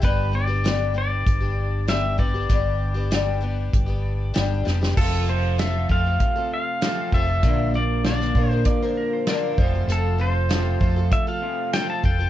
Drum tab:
CC |----------------|----------------|x---------------|----------------|
HH |x---x---x---x---|x---x---x---x---|----x---x---x---|x---x---x---x---|
SD |----o-------o---|----o-------o-oo|----o-------o---|----oo------o---|
BD |o-------o-----o-|o-------o-------|o-----o-o-----o-|o-----o-o-----o-|

CC |----------------|
HH |x---x---x---x---|
SD |----o-------o---|
BD |------o-o-----o-|